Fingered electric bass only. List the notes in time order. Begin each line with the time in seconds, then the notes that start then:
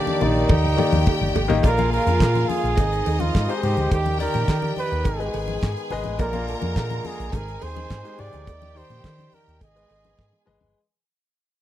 0.22 A#1
0.50 D#2
0.64 D2
0.93 D#2
1.21 G1
1.35 G#1
1.49 A1
1.64 A#1
2.06 F2
2.21 A#2
2.64 A#1
2.78 G#1
3.07 D#2
3.35 G#2
3.63 G#2
3.77 D2
3.92 D#2
4.35 A#2
4.48 D#3
4.92 D#2
5.06 G#1
5.34 G#1
5.63 G#2
5.91 G#1
6.06 A1
6.20 A#1
6.62 F2
6.77 A#2
7.19 A#1
7.33 G#1
7.63 D#2
7.91 G#2
8.20 G#2
8.34 D2
8.48 D#2
8.90 A#2
9.04 D#3
9.48 D#2
9.61 G#1
9.90 G#1
10.19 G#2
10.48 G#1
10.62 G1